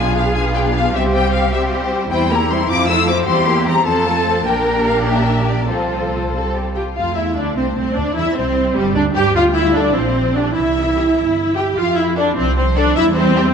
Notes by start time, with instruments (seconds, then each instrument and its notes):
Already playing: double bass section B1, viola section B3 D4, violin section F4 F5 G#5, cello section G#4
0.16 violin section F5
0.34 viola section B3 D4, violin section F4 F5 G#5
0.55 violin section G5
0.75 violin section F5
0.94 double bass section C2, viola section G3 C4, violin section G4 C5 E5, cello section G4
1.14 violin section G5
1.33 violin section F5
1.53 viola section G3 C4, violin section G4 C5 E5
2.10 double bass section E2, viola section G3 C4, violin section E4 C5 G5, cello section E4
2.31 viola section A#3 E4, violin section G4 A#4 A#5
2.50 viola section G3 C4, violin section E4 C5 C6
2.70 double bass section F2, viola section F3 C4, violin section F4 C5 D6
2.89 viola section A3 F4, violin section A4 F5 E6
3.08 viola section F3 C4, violin section F4 C5 D6
3.26 double bass section E2, viola section G3 C4, violin section E4 C5 C6, cello section G4
3.47 viola section A#3 E4, violin section G4 A#4
3.67 viola section G3 C4, violin section E4 C5 A#5
3.86 double bass section F2, viola section F3 C4, violin section A4 C5 A5, cello section A4
4.06 viola section A3, violin section F4 A4
4.27 viola section F3 C4, violin section A4 C5
4.46 double bass section A#1, viola section A#3 D4, violin section G4 A#4 G5, cello section A#4
4.88 violin section F5
5.08 cello section G4, violin section E5
5.48 violin section D5
5.69 double bass section C2, viola section F3 C4, violin section F4 A4 C5, cello section A4
6.34 viola section G3 C4, violin section A4
6.55 violin section G4
6.75 violin section F4 G5, viola section G4
6.96 double bass section F2, cello section A3, viola section F4, violin section F4 F5
7.15 double bass section E2, viola section E4, violin section E4 E5
7.37 double bass section D2, violin section D4 D5, viola section D4
7.56 double bass section C2, violin section C4 C5, viola section C4
7.75 double bass section C2, violin section C4 C5, viola section C4
7.96 double bass section D2, viola section D4, violin section D4 D5
8.15 double bass section E2, cello section G3, violin section E4 E5, viola section E4
8.36 double bass section C2, violin section C4 C5, viola section C4
8.76 double bass section G1, viola section G3, violin section G3 G4
8.95 double bass section D2, violin section D4 D5, viola section D4
9.15 double bass section G2, violin section G4 G5, viola section G4
9.35 double bass section D2, viola section F4, violin section F5
9.54 viola section E4, violin section E5
9.73 viola section D4, violin section A4 D5
9.94 double bass section A#1, cello section F3, viola section C4, violin section C5
10.35 viola section D4, violin section G4 D5
10.54 double bass section C2, cello section E3, viola section E4, violin section E5
10.96 violin section G4
11.17 double bass section G1
11.55 violin section G4 G5, viola section G4
11.76 double bass section F2, viola section F4, violin section F5
11.95 viola section E4, violin section E5
12.16 viola section D4, violin section A4 D5
12.37 double bass section C2, cello section F3, viola section C4, violin section C5
12.57 viola section C4, violin section C5
12.76 viola section D4, violin section A4 D5
12.96 double bass section E2, cello section G3, viola section E4, violin section E5
13.15 viola section C4, violin section C5
13.35 violin section G4